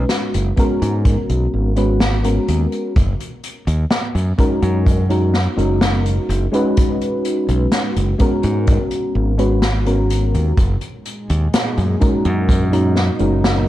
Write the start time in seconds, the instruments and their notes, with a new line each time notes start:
Already playing: fm electric piano G#3 C#4 D#4 F#4 B4
0.09 snare, closed hi-hat
0.34 fingered electric bass F#1, closed hi-hat
0.56 fm electric piano G#3 B3 C#4 F#4 A#4, kick, closed hi-hat
0.82 fingered electric bass G#2, closed hi-hat
1.05 kick, closed hi-hat
1.29 fingered electric bass B1, closed hi-hat
1.54 fingered electric bass G#1
1.76 fm electric piano G#3 B3 C#4 F#4 B4, closed hi-hat
2.00 snare, closed hi-hat
2.24 fm electric piano G#3 B3 C#4 F#4 A#4, closed hi-hat
2.48 fingered electric bass D#2, closed hi-hat
2.72 closed hi-hat
2.96 fingered electric bass F#1, kick, closed hi-hat
3.20 closed hi-hat
3.44 closed hi-hat
3.67 fingered electric bass D#2, closed hi-hat
3.91 snare, closed hi-hat
4.15 fingered electric bass F#2, closed hi-hat
4.38 fm electric piano G#3 C#4 D#4 F#4 A#4, kick, closed hi-hat
4.62 fingered electric bass F#2, closed hi-hat
4.87 kick, closed hi-hat
5.09 fm electric piano G#3 C#4 D#4 F#4 A#4, closed hi-hat
5.34 snare
5.57 fingered electric bass F#1, fm electric piano G#3 C#4 D#4 F#4 A#4, closed hi-hat
5.81 snare, closed hi-hat
6.06 closed hi-hat
6.29 fingered electric bass F#1, closed hi-hat
6.52 fm electric piano G#3 C#4 D#4 F#4 B4, closed hi-hat
6.77 kick, closed hi-hat
7.01 closed hi-hat
7.25 closed hi-hat
7.49 fingered electric bass B1, closed hi-hat
7.72 snare, closed hi-hat
7.96 fingered electric bass F#1, closed hi-hat
8.18 fm electric piano G#3 B3 C#4 F#4 A#4, kick, closed hi-hat
8.43 fingered electric bass G#2, closed hi-hat
8.67 kick, closed hi-hat
8.91 closed hi-hat
9.15 fingered electric bass G#1
9.38 fm electric piano G#3 B3 C#4 F#4 B4, closed hi-hat
9.62 snare, closed hi-hat
9.86 fm electric piano G#3 B3 C#4 F#4 A#4, closed hi-hat
10.10 closed hi-hat
10.34 fingered electric bass D#2, closed hi-hat
10.57 fingered electric bass F#1, analog synth pad A#2 G#3 D#4, kick, closed hi-hat
10.81 closed hi-hat
11.05 closed hi-hat
11.29 fingered electric bass D#2, closed hi-hat
11.53 snare, closed hi-hat
11.77 fingered electric bass F#2, closed hi-hat
12.00 fm electric piano G#3 C#4 D#4 F#4 A#4, kick, closed hi-hat
12.25 fingered electric bass F#2, closed hi-hat
12.48 analog synth pad F#3, kick, closed hi-hat
12.72 fm electric piano G#3 C#4 D#4 F#4 A#4, closed hi-hat
12.96 snare
13.19 fingered electric bass F#1, fm electric piano G#3 C#4 D#4 F#4 A#4, closed hi-hat
13.44 snare, closed hi-hat